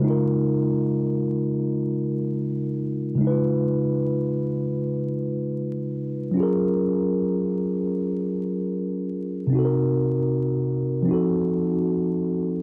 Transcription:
0.00 C#3 G#3
0.04 D#4 F4
0.10 A#4
3.15 C#3 G#3
3.21 D#4 E4
3.27 F4 B4
6.31 F#3 C#4
6.37 F4 G#4
6.43 A#4
9.47 C3 C4
9.53 D#4 F#4
9.59 A4
9.65 A#4
11.02 F3 C4
11.08 D#4 F#4
11.13 A4

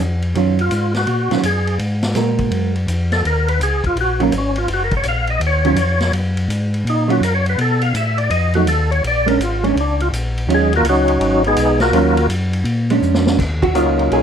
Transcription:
0.00 F2
0.22 ride
0.35 F#2 D#3 F#3 C#4 F4, ride
0.59 F4, ride
0.71 G#2, hi-hat pedal, ride
0.94 F#4, snare, ride
1.07 A#2, ride
1.31 A#2 D#3 F#3 C#4 F4, snare, ride
1.43 F#2 G#4, hi-hat pedal, ride
1.67 ride
1.79 G#2, ride
2.03 snare, ride
2.15 A#2 G#3 F#4 A#4, snare, hi-hat pedal, ride
2.39 kick, ride
2.51 F#2, ride
2.76 ride
2.87 F2, hi-hat pedal, ride
3.12 A4, snare, ride
3.25 D#2 A#4, ride
3.48 B4, ride
3.60 C#2 G#4, hi-hat pedal, ride
3.84 C#2 F4, kick, ride
3.95 A#1, ride
4.01 F#4
4.20 D#3 F#3 A#3 C#4 F4, ride
4.32 G#1, hi-hat pedal, ride
4.38 C#4
4.56 F4, ride
4.68 F#1, ride
4.73 F#4
4.84 A#4
4.91 kick, ride
4.97 C#5
5.03 A#1, hi-hat pedal, ride
5.08 F5
5.27 D#5, ride
5.40 D#2, ride
5.46 C#5
5.65 D#3 F#3 C#4 F4, ride
5.76 F2, hi-hat pedal, ride
6.01 snare, ride
6.13 F#2, ride
6.37 ride
6.48 G#2, hi-hat pedal, ride
6.74 ride
6.85 A#2, ride
6.89 D#4
7.08 D#3 F#3 C#4 F4 F#4, ride
7.20 F#2 A#4, hi-hat pedal, ride
7.35 C#5
7.46 B4, ride
7.58 B2 A4, ride
7.82 F5, ride
7.94 A2 E5, hi-hat pedal, ride
8.18 D5, ride
8.30 F2 D#5, ride
8.54 F#3 A3 D#4 F#4, ride
8.66 D#2 A4, hi-hat pedal, ride
8.91 C#5, ride
9.04 A#1 D5, ride
9.26 G#3 C#4 D4 A#4, ride
9.38 G#1, hi-hat pedal, ride
9.43 F4
9.64 G#3 C#4 D4, ride
9.75 C#2, ride
9.81 D4
10.00 F4, ride
10.12 A#1, hi-hat pedal, ride
10.38 ride
10.47 D#2 D#3 F#3 C#4 F4, ride
10.54 G#3 G#4
10.73 F#4 A#4, ride
10.77 A#3 F4
10.82 C#2, hi-hat pedal, ride
10.89 F#3 C#4 D#4 F#4
11.08 ride
11.20 G#1, ride
11.44 G#3 B3 D#4 G#4, ride
11.57 B1, hi-hat pedal, ride
11.80 A#3 F4 F#4 A#4, snare, ride
11.93 D#2 D#3 F#3 C#4 F4, ride
12.17 ride
12.29 F#2, hi-hat pedal, ride
12.53 ride
12.64 A#2, ride
12.90 G#3 C#4 D4, ride
13.02 F2, hi-hat pedal
13.14 snare
13.27 snare
13.39 D#2, kick, snare, crash
13.62 F#4, kick, ride
13.74 C#2 F#3 A#3 C#4 D#4 F4, hi-hat pedal, ride
13.99 ride
14.11 A#1 G#4, ride

